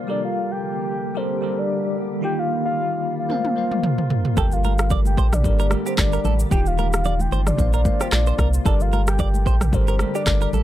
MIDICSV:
0, 0, Header, 1, 7, 480
1, 0, Start_track
1, 0, Key_signature, -2, "minor"
1, 0, Tempo, 535714
1, 76, Time_signature, 4, 2, 24, 8
1, 9525, End_track
2, 0, Start_track
2, 0, Title_t, "Soft synth lead"
2, 0, Program_c, 0, 80
2, 89, Note_on_c, 0, 74, 96
2, 206, Note_off_c, 0, 74, 0
2, 221, Note_on_c, 0, 77, 100
2, 461, Note_on_c, 0, 79, 98
2, 474, Note_off_c, 0, 77, 0
2, 560, Note_off_c, 0, 79, 0
2, 565, Note_on_c, 0, 79, 102
2, 1047, Note_on_c, 0, 72, 89
2, 1060, Note_off_c, 0, 79, 0
2, 1420, Note_on_c, 0, 74, 86
2, 1433, Note_off_c, 0, 72, 0
2, 1762, Note_off_c, 0, 74, 0
2, 2009, Note_on_c, 0, 79, 117
2, 2140, Note_on_c, 0, 77, 104
2, 2153, Note_off_c, 0, 79, 0
2, 2374, Note_off_c, 0, 77, 0
2, 2378, Note_on_c, 0, 77, 106
2, 2820, Note_off_c, 0, 77, 0
2, 2858, Note_on_c, 0, 77, 92
2, 3645, Note_off_c, 0, 77, 0
2, 3927, Note_on_c, 0, 79, 115
2, 4058, Note_on_c, 0, 77, 103
2, 4072, Note_off_c, 0, 79, 0
2, 4290, Note_off_c, 0, 77, 0
2, 4296, Note_on_c, 0, 77, 103
2, 4402, Note_off_c, 0, 77, 0
2, 4538, Note_on_c, 0, 79, 104
2, 4778, Note_on_c, 0, 74, 92
2, 4792, Note_off_c, 0, 79, 0
2, 5013, Note_off_c, 0, 74, 0
2, 5017, Note_on_c, 0, 74, 96
2, 5123, Note_off_c, 0, 74, 0
2, 5260, Note_on_c, 0, 72, 89
2, 5368, Note_on_c, 0, 74, 102
2, 5381, Note_off_c, 0, 72, 0
2, 5734, Note_off_c, 0, 74, 0
2, 5847, Note_on_c, 0, 79, 116
2, 5978, Note_on_c, 0, 77, 103
2, 5991, Note_off_c, 0, 79, 0
2, 6213, Note_off_c, 0, 77, 0
2, 6218, Note_on_c, 0, 77, 99
2, 6457, Note_on_c, 0, 79, 99
2, 6471, Note_off_c, 0, 77, 0
2, 6693, Note_off_c, 0, 79, 0
2, 6697, Note_on_c, 0, 74, 84
2, 6916, Note_off_c, 0, 74, 0
2, 6939, Note_on_c, 0, 74, 93
2, 7177, Note_on_c, 0, 72, 87
2, 7191, Note_off_c, 0, 74, 0
2, 7281, Note_off_c, 0, 72, 0
2, 7285, Note_on_c, 0, 74, 102
2, 7627, Note_off_c, 0, 74, 0
2, 7766, Note_on_c, 0, 74, 100
2, 7897, Note_on_c, 0, 77, 97
2, 7911, Note_off_c, 0, 74, 0
2, 8133, Note_off_c, 0, 77, 0
2, 8139, Note_on_c, 0, 79, 96
2, 8234, Note_off_c, 0, 79, 0
2, 8247, Note_on_c, 0, 79, 102
2, 8726, Note_on_c, 0, 72, 96
2, 8739, Note_off_c, 0, 79, 0
2, 9093, Note_off_c, 0, 72, 0
2, 9098, Note_on_c, 0, 74, 82
2, 9417, Note_off_c, 0, 74, 0
2, 9525, End_track
3, 0, Start_track
3, 0, Title_t, "Clean electric guitar"
3, 0, Program_c, 1, 27
3, 3923, Note_on_c, 1, 69, 103
3, 3994, Note_off_c, 1, 69, 0
3, 4163, Note_on_c, 1, 70, 83
3, 4234, Note_off_c, 1, 70, 0
3, 4402, Note_on_c, 1, 74, 89
3, 4473, Note_off_c, 1, 74, 0
3, 4643, Note_on_c, 1, 72, 90
3, 4714, Note_off_c, 1, 72, 0
3, 5015, Note_on_c, 1, 70, 75
3, 5073, Note_off_c, 1, 70, 0
3, 5255, Note_on_c, 1, 67, 77
3, 5313, Note_off_c, 1, 67, 0
3, 5496, Note_on_c, 1, 70, 78
3, 5553, Note_off_c, 1, 70, 0
3, 5601, Note_on_c, 1, 69, 84
3, 5672, Note_off_c, 1, 69, 0
3, 5842, Note_on_c, 1, 67, 110
3, 5913, Note_off_c, 1, 67, 0
3, 6082, Note_on_c, 1, 70, 83
3, 6153, Note_off_c, 1, 70, 0
3, 6322, Note_on_c, 1, 74, 88
3, 6393, Note_off_c, 1, 74, 0
3, 6563, Note_on_c, 1, 72, 93
3, 6634, Note_off_c, 1, 72, 0
3, 6933, Note_on_c, 1, 70, 75
3, 6991, Note_off_c, 1, 70, 0
3, 7175, Note_on_c, 1, 67, 77
3, 7233, Note_off_c, 1, 67, 0
3, 7413, Note_on_c, 1, 72, 82
3, 7471, Note_off_c, 1, 72, 0
3, 7522, Note_on_c, 1, 70, 81
3, 7593, Note_off_c, 1, 70, 0
3, 7760, Note_on_c, 1, 69, 104
3, 7832, Note_off_c, 1, 69, 0
3, 8002, Note_on_c, 1, 70, 84
3, 8073, Note_off_c, 1, 70, 0
3, 8242, Note_on_c, 1, 74, 91
3, 8313, Note_off_c, 1, 74, 0
3, 8483, Note_on_c, 1, 72, 90
3, 8553, Note_off_c, 1, 72, 0
3, 8856, Note_on_c, 1, 70, 78
3, 8913, Note_off_c, 1, 70, 0
3, 9096, Note_on_c, 1, 67, 80
3, 9153, Note_off_c, 1, 67, 0
3, 9334, Note_on_c, 1, 70, 87
3, 9392, Note_off_c, 1, 70, 0
3, 9443, Note_on_c, 1, 69, 82
3, 9514, Note_off_c, 1, 69, 0
3, 9525, End_track
4, 0, Start_track
4, 0, Title_t, "Tine electric piano"
4, 0, Program_c, 2, 4
4, 0, Control_c, 2, 64, 127
4, 0, Note_on_c, 2, 58, 73
4, 0, Note_on_c, 2, 72, 65
4, 0, Note_on_c, 2, 77, 80
4, 64, Note_on_c, 2, 55, 83
4, 73, Note_on_c, 2, 67, 73
4, 80, Note_on_c, 2, 69, 72
4, 87, Note_on_c, 2, 70, 88
4, 88, Control_c, 2, 64, 0
4, 93, Note_off_c, 2, 72, 0
4, 94, Note_off_c, 2, 58, 0
4, 97, Note_off_c, 2, 77, 0
4, 218, Control_c, 2, 64, 127
4, 791, Note_off_c, 2, 55, 0
4, 796, Note_off_c, 2, 67, 0
4, 799, Note_off_c, 2, 69, 0
4, 803, Note_off_c, 2, 70, 0
4, 1024, Note_on_c, 2, 55, 75
4, 1033, Note_on_c, 2, 67, 72
4, 1040, Note_on_c, 2, 69, 67
4, 1047, Note_on_c, 2, 70, 86
4, 1216, Note_off_c, 2, 55, 0
4, 1221, Note_off_c, 2, 67, 0
4, 1224, Note_off_c, 2, 69, 0
4, 1228, Note_off_c, 2, 70, 0
4, 1264, Note_on_c, 2, 55, 75
4, 1273, Note_on_c, 2, 67, 68
4, 1280, Note_on_c, 2, 69, 64
4, 1286, Note_on_c, 2, 70, 80
4, 1817, Note_off_c, 2, 55, 0
4, 1821, Note_off_c, 2, 67, 0
4, 1825, Note_off_c, 2, 69, 0
4, 1828, Note_off_c, 2, 70, 0
4, 1982, Note_on_c, 2, 51, 83
4, 1990, Note_on_c, 2, 63, 72
4, 1998, Note_on_c, 2, 65, 74
4, 2004, Note_on_c, 2, 67, 86
4, 2010, Control_c, 2, 64, 0
4, 2153, Control_c, 2, 64, 127
4, 2710, Note_off_c, 2, 51, 0
4, 2714, Note_off_c, 2, 63, 0
4, 2718, Note_off_c, 2, 65, 0
4, 2721, Note_off_c, 2, 67, 0
4, 2946, Note_on_c, 2, 58, 74
4, 2953, Note_on_c, 2, 70, 72
4, 2961, Note_on_c, 2, 72, 68
4, 2967, Control_c, 2, 64, 0
4, 2969, Note_on_c, 2, 77, 87
4, 3131, Control_c, 2, 64, 127
4, 3137, Note_off_c, 2, 58, 0
4, 3141, Note_off_c, 2, 70, 0
4, 3145, Note_off_c, 2, 72, 0
4, 3149, Note_off_c, 2, 77, 0
4, 3185, Note_on_c, 2, 58, 71
4, 3193, Note_on_c, 2, 70, 63
4, 3200, Note_on_c, 2, 72, 65
4, 3207, Note_on_c, 2, 77, 78
4, 3738, Note_off_c, 2, 58, 0
4, 3741, Note_off_c, 2, 70, 0
4, 3745, Note_off_c, 2, 72, 0
4, 3749, Note_off_c, 2, 77, 0
4, 3903, Note_on_c, 2, 55, 82
4, 3911, Note_on_c, 2, 67, 75
4, 3918, Note_on_c, 2, 69, 74
4, 3925, Note_on_c, 2, 70, 90
4, 3926, Control_c, 2, 64, 0
4, 4111, Control_c, 2, 64, 127
4, 4631, Note_off_c, 2, 55, 0
4, 4635, Note_off_c, 2, 67, 0
4, 4638, Note_off_c, 2, 69, 0
4, 4642, Note_off_c, 2, 70, 0
4, 4865, Note_on_c, 2, 55, 75
4, 4873, Note_on_c, 2, 67, 71
4, 4881, Note_on_c, 2, 69, 70
4, 4887, Note_on_c, 2, 70, 86
4, 5057, Note_off_c, 2, 55, 0
4, 5061, Note_off_c, 2, 67, 0
4, 5065, Note_off_c, 2, 69, 0
4, 5068, Note_off_c, 2, 70, 0
4, 5104, Note_on_c, 2, 55, 72
4, 5111, Note_on_c, 2, 67, 65
4, 5118, Note_on_c, 2, 69, 66
4, 5126, Note_on_c, 2, 70, 77
4, 5657, Note_off_c, 2, 55, 0
4, 5661, Note_off_c, 2, 67, 0
4, 5664, Note_off_c, 2, 69, 0
4, 5668, Note_off_c, 2, 70, 0
4, 5824, Note_on_c, 2, 51, 82
4, 5832, Note_on_c, 2, 63, 76
4, 5839, Note_on_c, 2, 65, 76
4, 5846, Control_c, 2, 64, 0
4, 5846, Note_on_c, 2, 67, 91
4, 6008, Control_c, 2, 64, 127
4, 6551, Note_off_c, 2, 51, 0
4, 6555, Note_off_c, 2, 63, 0
4, 6559, Note_off_c, 2, 65, 0
4, 6562, Note_off_c, 2, 67, 0
4, 6785, Note_on_c, 2, 58, 75
4, 6792, Note_on_c, 2, 70, 69
4, 6800, Note_on_c, 2, 72, 69
4, 6808, Note_on_c, 2, 77, 85
4, 6809, Control_c, 2, 64, 0
4, 6977, Note_off_c, 2, 58, 0
4, 6977, Control_c, 2, 64, 127
4, 6980, Note_off_c, 2, 70, 0
4, 6984, Note_off_c, 2, 72, 0
4, 6988, Note_off_c, 2, 77, 0
4, 7026, Note_on_c, 2, 58, 71
4, 7033, Note_on_c, 2, 70, 64
4, 7040, Note_on_c, 2, 72, 64
4, 7048, Note_on_c, 2, 77, 78
4, 7578, Note_off_c, 2, 58, 0
4, 7581, Note_off_c, 2, 70, 0
4, 7585, Note_off_c, 2, 72, 0
4, 7589, Note_off_c, 2, 77, 0
4, 7745, Note_on_c, 2, 55, 83
4, 7752, Note_on_c, 2, 67, 73
4, 7759, Note_on_c, 2, 69, 72
4, 7766, Control_c, 2, 64, 0
4, 7768, Note_on_c, 2, 70, 91
4, 7942, Control_c, 2, 64, 127
4, 8472, Note_off_c, 2, 55, 0
4, 8475, Note_off_c, 2, 67, 0
4, 8479, Note_off_c, 2, 69, 0
4, 8483, Note_off_c, 2, 70, 0
4, 8705, Note_on_c, 2, 55, 76
4, 8713, Note_on_c, 2, 67, 71
4, 8720, Note_on_c, 2, 69, 71
4, 8728, Note_on_c, 2, 70, 86
4, 8897, Note_off_c, 2, 55, 0
4, 8901, Note_off_c, 2, 67, 0
4, 8904, Note_off_c, 2, 69, 0
4, 8908, Note_off_c, 2, 70, 0
4, 8946, Note_on_c, 2, 55, 72
4, 8953, Note_on_c, 2, 67, 64
4, 8961, Note_on_c, 2, 69, 66
4, 8968, Note_on_c, 2, 70, 82
4, 9498, Note_off_c, 2, 55, 0
4, 9502, Note_off_c, 2, 67, 0
4, 9506, Note_off_c, 2, 69, 0
4, 9509, Note_off_c, 2, 70, 0
4, 9525, End_track
5, 0, Start_track
5, 0, Title_t, "Ambient pad"
5, 0, Program_c, 3, 92
5, 0, Note_on_c, 3, 58, 78
5, 75, Note_on_c, 3, 50, 85
5, 75, Note_on_c, 3, 55, 80
5, 75, Note_on_c, 3, 67, 94
5, 1976, Note_off_c, 3, 55, 0
5, 1976, Note_off_c, 3, 67, 0
5, 1977, Note_off_c, 3, 50, 0
5, 1996, Note_on_c, 3, 65, 97
5, 3897, Note_off_c, 3, 65, 0
5, 3914, Note_on_c, 3, 50, 89
5, 3915, Note_on_c, 3, 55, 79
5, 3916, Note_on_c, 3, 67, 93
5, 5816, Note_off_c, 3, 50, 0
5, 5816, Note_off_c, 3, 55, 0
5, 5817, Note_off_c, 3, 67, 0
5, 5836, Note_on_c, 3, 65, 97
5, 7737, Note_off_c, 3, 65, 0
5, 7756, Note_on_c, 3, 55, 77
5, 7756, Note_on_c, 3, 67, 97
5, 7757, Note_on_c, 3, 50, 84
5, 9525, Note_off_c, 3, 50, 0
5, 9525, Note_off_c, 3, 55, 0
5, 9525, Note_off_c, 3, 58, 0
5, 9525, Note_off_c, 3, 67, 0
5, 9525, End_track
6, 0, Start_track
6, 0, Title_t, "Sub bass"
6, 0, Program_c, 4, 38
6, 3916, Note_on_c, 4, 31, 110
6, 4636, Note_on_c, 4, 34, 101
6, 4649, Note_off_c, 4, 31, 0
6, 4878, Note_on_c, 4, 31, 101
6, 4891, Note_off_c, 4, 34, 0
6, 5156, Note_off_c, 4, 31, 0
6, 5357, Note_on_c, 4, 31, 100
6, 5536, Note_off_c, 4, 31, 0
6, 5596, Note_on_c, 4, 33, 92
6, 5776, Note_off_c, 4, 33, 0
6, 5836, Note_on_c, 4, 27, 115
6, 6520, Note_off_c, 4, 27, 0
6, 6556, Note_on_c, 4, 31, 93
6, 6736, Note_off_c, 4, 31, 0
6, 6796, Note_on_c, 4, 34, 107
6, 7075, Note_off_c, 4, 34, 0
6, 7276, Note_on_c, 4, 34, 98
6, 7456, Note_off_c, 4, 34, 0
6, 7513, Note_on_c, 4, 36, 98
6, 7694, Note_off_c, 4, 36, 0
6, 7756, Note_on_c, 4, 31, 115
6, 8477, Note_on_c, 4, 34, 101
6, 8490, Note_off_c, 4, 31, 0
6, 8717, Note_on_c, 4, 31, 98
6, 8730, Note_off_c, 4, 34, 0
6, 8995, Note_off_c, 4, 31, 0
6, 9196, Note_on_c, 4, 31, 108
6, 9376, Note_off_c, 4, 31, 0
6, 9435, Note_on_c, 4, 33, 87
6, 9525, Note_off_c, 4, 33, 0
6, 9525, End_track
7, 0, Start_track
7, 0, Title_t, "Drums"
7, 2955, Note_on_c, 9, 48, 61
7, 3045, Note_off_c, 9, 48, 0
7, 3087, Note_on_c, 9, 48, 61
7, 3177, Note_off_c, 9, 48, 0
7, 3328, Note_on_c, 9, 47, 71
7, 3418, Note_off_c, 9, 47, 0
7, 3436, Note_on_c, 9, 45, 92
7, 3525, Note_off_c, 9, 45, 0
7, 3568, Note_on_c, 9, 45, 82
7, 3658, Note_off_c, 9, 45, 0
7, 3676, Note_on_c, 9, 43, 105
7, 3766, Note_off_c, 9, 43, 0
7, 3807, Note_on_c, 9, 43, 97
7, 3897, Note_off_c, 9, 43, 0
7, 3916, Note_on_c, 9, 36, 116
7, 3916, Note_on_c, 9, 82, 77
7, 3924, Note_on_c, 9, 64, 79
7, 4005, Note_off_c, 9, 36, 0
7, 4005, Note_off_c, 9, 82, 0
7, 4014, Note_off_c, 9, 64, 0
7, 4046, Note_on_c, 9, 82, 59
7, 4136, Note_off_c, 9, 82, 0
7, 4157, Note_on_c, 9, 82, 48
7, 4165, Note_on_c, 9, 63, 87
7, 4247, Note_off_c, 9, 82, 0
7, 4254, Note_off_c, 9, 63, 0
7, 4287, Note_on_c, 9, 82, 96
7, 4293, Note_on_c, 9, 37, 117
7, 4376, Note_off_c, 9, 82, 0
7, 4383, Note_off_c, 9, 37, 0
7, 4390, Note_on_c, 9, 82, 73
7, 4394, Note_on_c, 9, 36, 100
7, 4404, Note_on_c, 9, 64, 77
7, 4480, Note_off_c, 9, 82, 0
7, 4484, Note_off_c, 9, 36, 0
7, 4493, Note_off_c, 9, 64, 0
7, 4527, Note_on_c, 9, 63, 80
7, 4530, Note_on_c, 9, 82, 59
7, 4616, Note_off_c, 9, 63, 0
7, 4620, Note_off_c, 9, 82, 0
7, 4637, Note_on_c, 9, 36, 96
7, 4640, Note_on_c, 9, 63, 53
7, 4642, Note_on_c, 9, 82, 53
7, 4726, Note_off_c, 9, 36, 0
7, 4730, Note_off_c, 9, 63, 0
7, 4731, Note_off_c, 9, 82, 0
7, 4773, Note_on_c, 9, 37, 92
7, 4774, Note_on_c, 9, 45, 88
7, 4774, Note_on_c, 9, 82, 88
7, 4862, Note_off_c, 9, 37, 0
7, 4864, Note_off_c, 9, 45, 0
7, 4864, Note_off_c, 9, 82, 0
7, 4877, Note_on_c, 9, 36, 93
7, 4880, Note_on_c, 9, 82, 69
7, 4889, Note_on_c, 9, 64, 74
7, 4967, Note_off_c, 9, 36, 0
7, 4969, Note_off_c, 9, 82, 0
7, 4979, Note_off_c, 9, 64, 0
7, 5010, Note_on_c, 9, 82, 61
7, 5100, Note_off_c, 9, 82, 0
7, 5113, Note_on_c, 9, 37, 107
7, 5116, Note_on_c, 9, 82, 57
7, 5124, Note_on_c, 9, 63, 79
7, 5203, Note_off_c, 9, 37, 0
7, 5206, Note_off_c, 9, 82, 0
7, 5214, Note_off_c, 9, 63, 0
7, 5254, Note_on_c, 9, 82, 93
7, 5343, Note_off_c, 9, 82, 0
7, 5354, Note_on_c, 9, 82, 78
7, 5356, Note_on_c, 9, 36, 105
7, 5358, Note_on_c, 9, 37, 103
7, 5358, Note_on_c, 9, 39, 110
7, 5364, Note_on_c, 9, 63, 78
7, 5444, Note_off_c, 9, 82, 0
7, 5446, Note_off_c, 9, 36, 0
7, 5448, Note_off_c, 9, 37, 0
7, 5448, Note_off_c, 9, 39, 0
7, 5454, Note_off_c, 9, 63, 0
7, 5487, Note_on_c, 9, 82, 55
7, 5577, Note_off_c, 9, 82, 0
7, 5597, Note_on_c, 9, 63, 77
7, 5597, Note_on_c, 9, 64, 74
7, 5597, Note_on_c, 9, 82, 57
7, 5686, Note_off_c, 9, 82, 0
7, 5687, Note_off_c, 9, 63, 0
7, 5687, Note_off_c, 9, 64, 0
7, 5729, Note_on_c, 9, 82, 98
7, 5818, Note_off_c, 9, 82, 0
7, 5836, Note_on_c, 9, 36, 118
7, 5838, Note_on_c, 9, 82, 77
7, 5844, Note_on_c, 9, 64, 81
7, 5926, Note_off_c, 9, 36, 0
7, 5927, Note_off_c, 9, 82, 0
7, 5933, Note_off_c, 9, 64, 0
7, 5968, Note_on_c, 9, 82, 56
7, 6057, Note_off_c, 9, 82, 0
7, 6077, Note_on_c, 9, 82, 49
7, 6084, Note_on_c, 9, 63, 87
7, 6166, Note_off_c, 9, 82, 0
7, 6174, Note_off_c, 9, 63, 0
7, 6209, Note_on_c, 9, 82, 94
7, 6216, Note_on_c, 9, 37, 120
7, 6299, Note_off_c, 9, 82, 0
7, 6306, Note_off_c, 9, 37, 0
7, 6311, Note_on_c, 9, 82, 73
7, 6322, Note_on_c, 9, 64, 76
7, 6400, Note_off_c, 9, 82, 0
7, 6412, Note_off_c, 9, 64, 0
7, 6446, Note_on_c, 9, 63, 83
7, 6451, Note_on_c, 9, 82, 60
7, 6536, Note_off_c, 9, 63, 0
7, 6541, Note_off_c, 9, 82, 0
7, 6561, Note_on_c, 9, 63, 54
7, 6561, Note_on_c, 9, 82, 51
7, 6650, Note_off_c, 9, 63, 0
7, 6650, Note_off_c, 9, 82, 0
7, 6690, Note_on_c, 9, 37, 89
7, 6692, Note_on_c, 9, 45, 97
7, 6692, Note_on_c, 9, 82, 86
7, 6780, Note_off_c, 9, 37, 0
7, 6782, Note_off_c, 9, 45, 0
7, 6782, Note_off_c, 9, 82, 0
7, 6796, Note_on_c, 9, 36, 94
7, 6797, Note_on_c, 9, 82, 69
7, 6808, Note_on_c, 9, 64, 76
7, 6885, Note_off_c, 9, 36, 0
7, 6887, Note_off_c, 9, 82, 0
7, 6898, Note_off_c, 9, 64, 0
7, 6928, Note_on_c, 9, 82, 59
7, 7017, Note_off_c, 9, 82, 0
7, 7034, Note_on_c, 9, 82, 60
7, 7035, Note_on_c, 9, 36, 103
7, 7043, Note_on_c, 9, 63, 83
7, 7124, Note_off_c, 9, 82, 0
7, 7125, Note_off_c, 9, 36, 0
7, 7133, Note_off_c, 9, 63, 0
7, 7172, Note_on_c, 9, 82, 92
7, 7175, Note_on_c, 9, 37, 92
7, 7262, Note_off_c, 9, 82, 0
7, 7264, Note_off_c, 9, 37, 0
7, 7272, Note_on_c, 9, 82, 76
7, 7277, Note_on_c, 9, 37, 108
7, 7277, Note_on_c, 9, 39, 105
7, 7281, Note_on_c, 9, 63, 78
7, 7362, Note_off_c, 9, 82, 0
7, 7366, Note_off_c, 9, 37, 0
7, 7366, Note_off_c, 9, 39, 0
7, 7371, Note_off_c, 9, 63, 0
7, 7405, Note_on_c, 9, 82, 57
7, 7495, Note_off_c, 9, 82, 0
7, 7513, Note_on_c, 9, 36, 93
7, 7514, Note_on_c, 9, 82, 57
7, 7515, Note_on_c, 9, 63, 71
7, 7515, Note_on_c, 9, 64, 77
7, 7516, Note_on_c, 9, 37, 94
7, 7603, Note_off_c, 9, 36, 0
7, 7603, Note_off_c, 9, 82, 0
7, 7605, Note_off_c, 9, 37, 0
7, 7605, Note_off_c, 9, 63, 0
7, 7605, Note_off_c, 9, 64, 0
7, 7648, Note_on_c, 9, 82, 102
7, 7737, Note_off_c, 9, 82, 0
7, 7755, Note_on_c, 9, 36, 121
7, 7756, Note_on_c, 9, 82, 79
7, 7763, Note_on_c, 9, 64, 80
7, 7845, Note_off_c, 9, 36, 0
7, 7846, Note_off_c, 9, 82, 0
7, 7852, Note_off_c, 9, 64, 0
7, 7886, Note_on_c, 9, 82, 58
7, 7976, Note_off_c, 9, 82, 0
7, 7997, Note_on_c, 9, 82, 50
7, 8005, Note_on_c, 9, 63, 83
7, 8087, Note_off_c, 9, 82, 0
7, 8094, Note_off_c, 9, 63, 0
7, 8128, Note_on_c, 9, 82, 96
7, 8135, Note_on_c, 9, 37, 113
7, 8217, Note_off_c, 9, 82, 0
7, 8224, Note_off_c, 9, 37, 0
7, 8232, Note_on_c, 9, 82, 72
7, 8234, Note_on_c, 9, 36, 96
7, 8242, Note_on_c, 9, 64, 77
7, 8321, Note_off_c, 9, 82, 0
7, 8324, Note_off_c, 9, 36, 0
7, 8332, Note_off_c, 9, 64, 0
7, 8366, Note_on_c, 9, 63, 80
7, 8372, Note_on_c, 9, 82, 59
7, 8456, Note_off_c, 9, 63, 0
7, 8462, Note_off_c, 9, 82, 0
7, 8476, Note_on_c, 9, 36, 94
7, 8481, Note_on_c, 9, 63, 54
7, 8481, Note_on_c, 9, 82, 53
7, 8566, Note_off_c, 9, 36, 0
7, 8571, Note_off_c, 9, 63, 0
7, 8571, Note_off_c, 9, 82, 0
7, 8610, Note_on_c, 9, 37, 92
7, 8612, Note_on_c, 9, 45, 96
7, 8612, Note_on_c, 9, 82, 88
7, 8700, Note_off_c, 9, 37, 0
7, 8702, Note_off_c, 9, 45, 0
7, 8702, Note_off_c, 9, 82, 0
7, 8717, Note_on_c, 9, 36, 94
7, 8718, Note_on_c, 9, 82, 71
7, 8728, Note_on_c, 9, 64, 78
7, 8806, Note_off_c, 9, 36, 0
7, 8808, Note_off_c, 9, 82, 0
7, 8818, Note_off_c, 9, 64, 0
7, 8849, Note_on_c, 9, 82, 62
7, 8939, Note_off_c, 9, 82, 0
7, 8953, Note_on_c, 9, 37, 104
7, 8956, Note_on_c, 9, 82, 58
7, 8964, Note_on_c, 9, 63, 83
7, 9043, Note_off_c, 9, 37, 0
7, 9045, Note_off_c, 9, 82, 0
7, 9054, Note_off_c, 9, 63, 0
7, 9094, Note_on_c, 9, 82, 97
7, 9184, Note_off_c, 9, 82, 0
7, 9195, Note_on_c, 9, 82, 77
7, 9197, Note_on_c, 9, 36, 101
7, 9199, Note_on_c, 9, 37, 108
7, 9199, Note_on_c, 9, 39, 102
7, 9202, Note_on_c, 9, 63, 78
7, 9285, Note_off_c, 9, 82, 0
7, 9286, Note_off_c, 9, 36, 0
7, 9289, Note_off_c, 9, 37, 0
7, 9289, Note_off_c, 9, 39, 0
7, 9292, Note_off_c, 9, 63, 0
7, 9329, Note_on_c, 9, 82, 54
7, 9418, Note_off_c, 9, 82, 0
7, 9437, Note_on_c, 9, 63, 76
7, 9437, Note_on_c, 9, 64, 76
7, 9437, Note_on_c, 9, 82, 55
7, 9525, Note_off_c, 9, 63, 0
7, 9525, Note_off_c, 9, 64, 0
7, 9525, Note_off_c, 9, 82, 0
7, 9525, End_track
0, 0, End_of_file